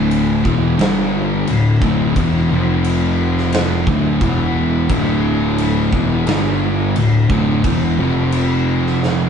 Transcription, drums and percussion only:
0.11 crash
0.45 kick
0.79 snare, crash
1.47 crash
1.82 kick
2.16 kick, crash
2.84 crash
3.38 snare
3.52 snare, crash
3.87 kick
4.21 kick, crash
4.90 kick, crash
5.58 crash
5.93 kick
6.27 snare, crash
6.96 crash
7.30 kick
7.64 kick, crash
8.32 crash
8.86 snare
9.03 snare

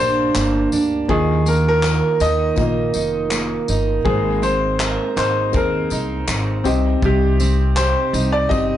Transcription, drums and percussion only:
0.35 clap, tambourine
0.72 tambourine
1.09 kick
1.46 tambourine
1.83 clap, tambourine
2.20 tambourine
2.56 kick, tambourine
2.94 tambourine
3.31 clap, tambourine
3.68 tambourine
4.06 kick
4.43 tambourine
4.80 clap, tambourine
5.17 clap, tambourine
5.53 kick, tambourine
5.90 tambourine
6.28 clap, tambourine
6.65 tambourine
7.02 kick, tambourine
7.40 tambourine
7.76 clap, tambourine
8.14 tambourine
8.51 kick, tambourine

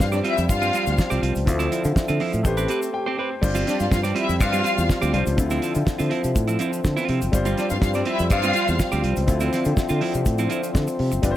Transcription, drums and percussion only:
0.00 kick, snare, shaker
0.12 closed hi-hat, shaker
0.24 closed hi-hat
0.38 closed hi-hat, shaker
0.49 kick, closed hi-hat, shaker
0.62 closed hi-hat, shaker
0.73 closed hi-hat, shaker
0.87 closed hi-hat, shaker
0.98 kick, snare, shaker
1.11 closed hi-hat, shaker
1.23 closed hi-hat
1.35 closed hi-hat, shaker
1.47 kick, closed hi-hat, shaker
1.60 closed hi-hat, shaker
1.72 closed hi-hat, shaker
1.84 closed hi-hat, shaker
1.96 kick, snare, shaker
2.08 closed hi-hat, shaker
2.20 open hi-hat
2.33 closed hi-hat, shaker
2.45 kick, closed hi-hat, shaker
2.57 closed hi-hat, shaker
2.68 closed hi-hat, shaker
2.82 closed hi-hat, shaker
3.43 kick, crash, shaker
3.55 closed hi-hat, shaker
3.67 snare, closed hi-hat, shaker
3.80 closed hi-hat, shaker
3.91 kick, snare, shaker
4.04 closed hi-hat, shaker
4.16 closed hi-hat
4.29 closed hi-hat, shaker
4.41 kick, closed hi-hat, shaker
4.53 closed hi-hat, shaker
4.64 closed hi-hat, shaker
4.78 closed hi-hat, shaker
4.89 kick, snare, shaker
5.02 closed hi-hat, shaker
5.14 closed hi-hat
5.26 closed hi-hat, shaker
5.38 kick, closed hi-hat, shaker
5.50 closed hi-hat, shaker
5.62 closed hi-hat, shaker
5.75 closed hi-hat, shaker
5.87 kick, snare, shaker
5.99 closed hi-hat, shaker
6.11 closed hi-hat
6.24 closed hi-hat, shaker
6.36 kick, closed hi-hat, shaker
6.47 closed hi-hat, shaker
6.59 closed hi-hat, shaker
6.73 closed hi-hat, shaker
6.84 kick, snare, shaker
6.97 closed hi-hat, shaker
7.09 closed hi-hat
7.22 closed hi-hat, shaker
7.33 kick, closed hi-hat, shaker
7.45 closed hi-hat, shaker
7.57 snare, closed hi-hat, shaker
7.70 closed hi-hat, shaker
7.82 kick, snare, shaker
7.94 closed hi-hat, shaker
8.05 closed hi-hat
8.19 closed hi-hat, shaker
8.30 kick, closed hi-hat, shaker
8.42 closed hi-hat, shaker
8.53 closed hi-hat, shaker
8.68 closed hi-hat, shaker
8.79 kick, snare, shaker
8.92 closed hi-hat, shaker
9.04 closed hi-hat
9.16 closed hi-hat, shaker
9.28 kick, closed hi-hat, shaker
9.40 closed hi-hat, shaker
9.53 snare, closed hi-hat, shaker
9.65 closed hi-hat, shaker
9.77 kick, snare, shaker
9.89 closed hi-hat, shaker
10.01 open hi-hat
10.14 closed hi-hat, shaker
10.26 kick, closed hi-hat, shaker
10.38 closed hi-hat, shaker
10.50 closed hi-hat, shaker
10.63 closed hi-hat, shaker
10.75 kick, snare, shaker
10.87 closed hi-hat, shaker
10.99 open hi-hat
11.12 closed hi-hat, shaker
11.23 kick, closed hi-hat, shaker

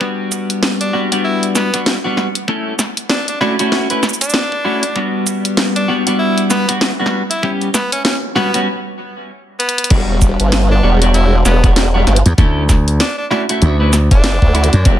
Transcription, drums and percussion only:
0.01 kick
0.32 kick, shaker
0.50 closed hi-hat
0.63 snare
0.81 closed hi-hat
1.12 closed hi-hat
1.43 closed hi-hat
1.55 snare, shaker
1.74 kick, closed hi-hat
1.86 snare
2.17 snare
2.35 closed hi-hat
2.48 kick
2.79 snare, shaker
2.97 closed hi-hat
3.09 snare
3.28 closed hi-hat
3.41 snare
3.59 closed hi-hat
3.72 snare
3.90 closed hi-hat
4.03 snare, shaker
4.09 shaker
4.13 shaker
4.21 kick, closed hi-hat, shaker
4.23 shaker
4.30 shaker
4.34 snare
4.52 kick
4.83 closed hi-hat
4.96 kick
5.27 kick, shaker
5.45 closed hi-hat
5.57 snare
5.76 closed hi-hat
6.07 closed hi-hat
6.38 closed hi-hat
6.50 snare, shaker
6.69 kick, closed hi-hat
6.81 snare
7.06 snare
7.31 closed hi-hat
7.43 kick
7.61 closed hi-hat
7.74 kick, snare, shaker
7.92 closed hi-hat
8.05 snare
8.36 snare
8.54 closed hi-hat
9.60 closed hi-hat
9.69 closed hi-hat
9.78 closed hi-hat
9.84 closed hi-hat
9.90 kick, closed hi-hat, crash
10.21 kick, shaker
10.40 closed hi-hat
10.52 snare, closed hi-hat
11.02 closed hi-hat
11.14 closed hi-hat
11.45 snare, closed hi-hat, shaker
11.64 kick, closed hi-hat
11.76 snare, closed hi-hat
12.07 snare, closed hi-hat
12.16 closed hi-hat
12.26 closed hi-hat
12.38 kick, closed hi-hat
12.69 kick, snare, shaker
12.88 closed hi-hat
13.00 snare, closed hi-hat
13.31 snare
13.49 closed hi-hat
13.62 closed hi-hat
13.93 snare, closed hi-hat, shaker
14.11 kick, closed hi-hat
14.24 snare, closed hi-hat
14.42 kick
14.55 closed hi-hat
14.64 closed hi-hat
14.73 closed hi-hat
14.85 kick, closed hi-hat

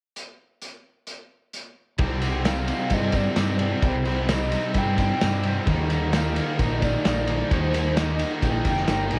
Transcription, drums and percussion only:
0.16 closed hi-hat
0.62 closed hi-hat
1.07 closed hi-hat
1.53 closed hi-hat
1.98 kick, ride, tambourine
2.21 ride, tambourine
2.45 snare, ride, tambourine
2.68 ride, tambourine
2.90 kick, ride, tambourine
3.12 kick, ride, tambourine
3.36 snare, ride, tambourine
3.59 ride
3.83 kick, ride, tambourine
4.05 ride, tambourine
4.29 snare, ride, tambourine
4.52 ride, tambourine
4.74 kick, ride, tambourine
4.98 kick, ride, tambourine
5.21 snare, ride, tambourine
5.43 ride, tambourine
5.67 kick, ride, tambourine
5.90 ride, tambourine
6.13 snare, ride, tambourine
6.36 ride, tambourine
6.59 kick, ride, tambourine
6.82 kick, ride, tambourine
7.05 snare, ride, tambourine
7.27 ride, tambourine
7.51 kick, ride, tambourine
7.74 ride, tambourine
7.97 snare, ride, tambourine
8.19 ride, tambourine
8.42 kick, ride, tambourine
8.65 kick, ride, tambourine
8.77 snare
8.87 snare, ride, tambourine
9.11 ride, tambourine

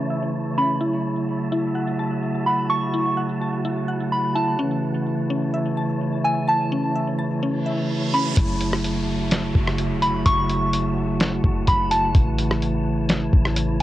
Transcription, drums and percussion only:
8.37 kick, closed hi-hat
8.61 closed hi-hat
8.73 cross-stick
8.84 closed hi-hat
9.31 snare, closed hi-hat
9.55 kick
9.67 cross-stick
9.78 closed hi-hat
10.02 closed hi-hat
10.26 kick, closed hi-hat
10.50 closed hi-hat
10.73 closed hi-hat
11.20 snare, closed hi-hat
11.44 kick
11.67 kick, closed hi-hat
11.91 closed hi-hat
12.15 kick, closed hi-hat
12.38 closed hi-hat
12.51 cross-stick
12.62 closed hi-hat
13.09 snare, closed hi-hat
13.33 kick
13.45 cross-stick
13.56 closed hi-hat

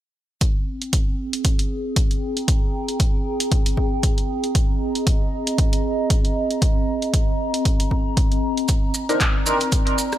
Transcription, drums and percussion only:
0.41 kick, closed hi-hat
0.82 closed hi-hat
0.93 kick, closed hi-hat
1.33 closed hi-hat
1.45 kick, closed hi-hat
1.59 closed hi-hat
1.96 kick, closed hi-hat
2.11 closed hi-hat
2.37 closed hi-hat
2.48 kick, closed hi-hat
2.88 closed hi-hat
3.00 kick, closed hi-hat
3.40 closed hi-hat
3.52 kick, closed hi-hat
3.66 closed hi-hat
3.77 kick
4.03 kick, closed hi-hat
4.18 closed hi-hat
4.44 closed hi-hat
4.55 kick, closed hi-hat
4.95 closed hi-hat
5.07 kick, closed hi-hat
5.47 closed hi-hat
5.58 kick, closed hi-hat
5.73 closed hi-hat
6.10 kick, closed hi-hat
6.25 closed hi-hat
6.51 closed hi-hat
6.62 kick, closed hi-hat
7.02 closed hi-hat
7.14 kick, closed hi-hat
7.54 closed hi-hat
7.65 kick, closed hi-hat
7.80 closed hi-hat
7.91 kick
8.17 kick, closed hi-hat
8.32 closed hi-hat
8.57 closed hi-hat
8.68 kick, closed hi-hat, maracas
8.94 maracas
9.09 closed hi-hat, maracas
9.20 kick, clap, closed hi-hat, maracas
9.46 maracas
9.60 closed hi-hat, maracas
9.72 kick, closed hi-hat, maracas
9.87 closed hi-hat
9.98 maracas
10.12 cross-stick, maracas

